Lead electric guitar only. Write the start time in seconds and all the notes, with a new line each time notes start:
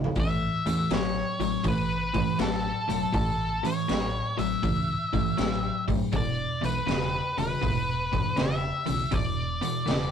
0.20 E5
0.94 C#5
1.68 B4
2.42 A4
3.15 A4
3.66 C#5
4.39 E5
6.16 D5
6.65 B4
7.39 B4
8.38 E5
9.14 D5